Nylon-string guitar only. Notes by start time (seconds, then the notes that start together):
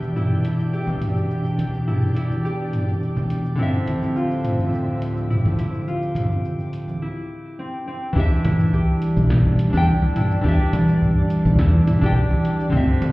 Already playing: E3 D4 G4 E5
3.56 D3 C4
3.60 F3 E5
8.13 E3 D4
8.17 G4 E5
9.70 E3 D4
9.75 G4 G5
10.41 E3 D4
10.46 G4 E5
11.99 E3 D4
12.04 G4 G5
12.70 D3 C4
12.75 F3 E5